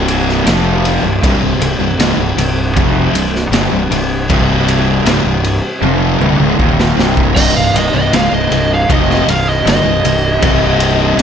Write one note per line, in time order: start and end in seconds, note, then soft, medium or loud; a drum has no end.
0.00 0.42 C1 loud
0.00 0.44 C2 medium
0.00 0.45 G2 medium
0.00 0.45 C3 loud
0.00 7.32 C3 medium
0.00 7.32 G3 medium
0.00 1.19 D4 medium
0.08 ride medium
0.29 snare soft
0.45 0.99 F1 medium
0.45 1.02 F2 medium
0.45 1.02 C3 medium
0.45 1.02 F3 loud
0.45 snare loud
0.45 ride loud
0.85 ride medium
1.03 1.21 C1 medium
1.03 1.22 C2 medium
1.03 1.23 G2 medium
1.23 1.40 C1 medium
1.23 1.41 C2 medium
1.23 1.41 G2 loud
1.23 7.33 C4 medium
1.23 kick loud
1.23 ride loud
1.40 1.58 C1 medium
1.40 1.60 C2 medium
1.40 1.61 G2 medium
1.59 1.78 C1 medium
1.59 1.79 C2 medium
1.59 1.80 G2 medium
1.59 ride medium
1.78 1.97 C1 medium
1.78 1.99 C2 medium
1.78 2.00 G2 medium
1.98 2.16 C#1 loud
1.98 2.18 C#2 medium
1.98 2.18 G#2 loud
1.98 snare loud
1.98 ride loud
2.17 2.35 C1 medium
2.17 2.38 C2 medium
2.17 2.38 G2 medium
2.36 2.72 C1 medium
2.36 2.69 C2 medium
2.36 2.69 G2 medium
2.36 ride medium
2.76 3.12 F1 loud
2.76 3.13 F2 medium
2.76 3.14 C3 loud
2.76 3.14 F3 loud
2.76 kick loud
2.76 ride medium
3.13 3.49 C1 medium
3.13 3.46 C2 medium
3.13 3.46 G2 medium
3.13 ride medium
3.35 snare soft
3.50 3.69 G1 medium
3.50 3.71 G2 medium
3.50 snare loud
3.50 ride medium
3.55 3.72 D3 loud
3.72 3.89 C1 medium
3.72 3.91 C2 medium
3.72 3.92 G2 medium
3.90 4.26 C1 medium
3.90 4.22 C2 medium
3.90 4.22 G2 medium
3.90 ride medium
4.30 5.02 C1 medium
4.30 5.05 C2 loud
4.30 5.06 G2 medium
4.30 5.06 C3 loud
4.30 kick loud
4.30 ride loud
4.68 ride medium
5.05 5.23 C#1 loud
5.05 5.24 C#2 medium
5.05 5.24 G#2 loud
5.05 snare loud
5.05 ride loud
5.24 5.60 C1 medium
5.24 5.57 C2 medium
5.24 5.57 G2 medium
5.44 ride medium
5.81 6.18 F1 loud
5.81 6.20 F2 medium
5.81 6.20 C3 medium
5.81 6.21 F3 medium
5.81 high tom medium
6.20 6.38 C1 loud
6.20 6.39 C2 loud
6.20 6.40 G2 loud
6.20 mid tom medium
6.39 6.58 C#1 loud
6.39 6.59 C#2 medium
6.39 6.59 G#2 medium
6.58 6.95 D#1 medium
6.58 6.97 D#2 medium
6.58 6.97 A#2 loud
6.58 6.96 D#3 loud
6.58 kick medium
6.62 6.98 D#3 medium
6.80 snare medium
6.97 7.33 C1 loud
6.97 7.35 C2 medium
6.97 7.36 G2 medium
6.97 7.36 C3 loud
6.97 snare loud
7.17 kick loud
7.35 7.54 C1 medium
7.35 7.55 C2 medium
7.35 7.55 G2 loud
7.35 11.22 C3 medium
7.35 11.22 G3 medium
7.35 11.22 D#4 medium
7.35 7.54 D#5 loud
7.35 kick loud
7.35 crash loud
7.52 7.73 C1 medium
7.52 7.72 G2 medium
7.57 7.74 C2 medium
7.57 7.75 G2 medium
7.57 7.76 F5 loud
7.74 7.92 C1 loud
7.74 7.93 C2 medium
7.74 7.94 G2 medium
7.74 7.94 D#5 medium
7.74 ride medium
7.93 8.11 C1 medium
7.93 8.13 C2 medium
7.93 8.13 G2 medium
7.93 8.13 D#5 medium
8.13 8.31 C#1 medium
8.13 8.31 C#2 medium
8.13 8.32 G#2 loud
8.13 8.32 F5 loud
8.13 snare loud
8.13 ride loud
8.32 8.49 C1 medium
8.32 8.50 C2 medium
8.32 8.51 G2 medium
8.32 8.51 D#5 medium
8.51 8.86 C1 medium
8.51 8.82 C2 medium
8.51 8.82 G2 medium
8.51 8.70 D#5 medium
8.51 ride medium
8.74 8.92 F5 medium
8.89 9.25 F1 loud
8.89 9.26 F2 medium
8.89 9.27 C3 loud
8.89 9.27 F3 loud
8.89 9.09 D#5 medium
8.89 kick loud
8.89 ride medium
9.10 9.30 D#5 medium
9.10 snare soft
9.27 9.63 C1 medium
9.27 9.58 C2 medium
9.27 9.59 G2 medium
9.27 9.47 F5 medium
9.27 ride medium
9.49 9.66 D#5 loud
9.65 9.83 G1 medium
9.65 9.83 G2 medium
9.65 9.84 D3 medium
9.65 11.16 D#5 loud
9.65 snare loud
9.65 ride loud
9.84 10.02 C1 medium
9.84 10.03 C2 medium
9.84 10.03 G2 medium
10.03 10.39 C1 medium
10.03 10.35 C2 medium
10.03 10.35 G2 medium
10.03 ride medium
10.42 11.15 C1 loud
10.42 11.17 C2 medium
10.42 11.18 G2 loud
10.42 11.18 C3 loud
10.42 kick loud
10.42 ride loud
10.80 ride medium
11.17 11.22 C#1 loud
11.17 11.22 C#2 loud
11.17 11.22 G#2 loud
11.17 ride loud